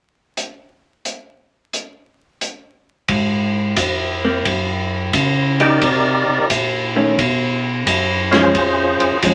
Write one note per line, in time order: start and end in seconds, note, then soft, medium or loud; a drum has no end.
0.37 closed hi-hat medium
1.05 closed hi-hat soft
1.73 closed hi-hat medium
2.41 closed hi-hat soft
3.08 3.75 G#2 medium
3.08 kick soft
3.08 ride soft
3.76 4.43 F2 medium
3.76 kick soft
3.76 hi-hat pedal medium
3.76 ride medium
4.25 4.44 A#3 soft
4.25 4.44 C4 medium
4.45 5.11 F#2 medium
4.45 kick soft
4.45 ride medium
5.13 5.80 C#3 medium
5.13 kick soft
5.13 hi-hat pedal soft
5.13 ride medium
5.60 5.80 A#3 soft
5.60 5.80 D#4 medium
5.60 6.46 D#4 soft
5.60 5.80 G4 medium
5.60 6.47 G4 soft
5.60 6.47 A#4 medium
5.60 6.46 D5 soft
5.60 ride soft
5.81 6.24 C3 medium
5.81 kick soft
5.81 ride medium
6.28 6.39 C3 soft
6.50 7.16 A#2 medium
6.50 kick soft
6.50 hi-hat pedal medium
6.50 ride medium
6.96 7.16 D#3 soft
6.96 7.16 A3 medium
6.96 7.17 C#4 medium
7.18 7.84 B2 medium
7.18 kick soft
7.18 ride medium
7.86 8.52 F#2 medium
7.86 kick soft
7.86 hi-hat pedal soft
7.86 ride medium
8.31 8.53 F3 medium
8.31 8.53 G#3 medium
8.31 9.17 C#4 medium
8.31 8.53 C#4 medium
8.31 9.18 F4 medium
8.31 9.18 G#4 soft
8.31 9.18 C5 medium
8.31 snare soft
8.31 ride soft
8.55 8.97 F2 medium
8.55 kick soft
8.55 ride soft
9.00 9.12 F2 soft
9.00 ride soft
9.22 9.34 D#2 medium
9.22 9.34 F3 soft
9.22 9.34 G#3 soft
9.22 9.34 C#4 soft
9.22 kick soft
9.22 hi-hat pedal soft
9.22 ride medium